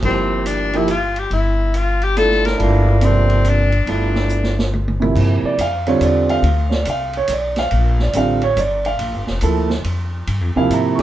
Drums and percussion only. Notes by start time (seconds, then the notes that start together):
0.03 kick, crash
0.46 hi-hat pedal, ride
0.73 ride
0.88 hi-hat pedal, ride
1.16 ride
1.31 ride
1.74 hi-hat pedal, ride
2.02 ride
2.17 hi-hat pedal, ride
2.31 snare
2.45 snare, ride
2.60 ride
3.01 hi-hat pedal, ride
3.30 ride
3.45 hi-hat pedal, ride
3.72 ride
3.87 ride
4.15 snare
4.29 hi-hat pedal
4.43 snare
4.59 snare
4.73 high tom
4.88 high tom
5.02 high tom
5.16 kick, crash
5.59 hi-hat pedal, ride
5.87 ride
6.01 hi-hat pedal, ride
6.29 ride
6.44 ride
6.71 snare
6.85 hi-hat pedal, ride
7.13 ride
7.28 hi-hat pedal, ride
7.56 snare, ride
7.71 ride
7.99 snare
8.13 hi-hat pedal, ride
8.42 ride
8.57 hi-hat pedal, ride
8.85 ride
8.99 ride
9.27 snare
9.41 hi-hat pedal, ride
9.70 snare
9.84 ride
10.27 ride
10.71 hi-hat pedal, ride
10.99 snare, ride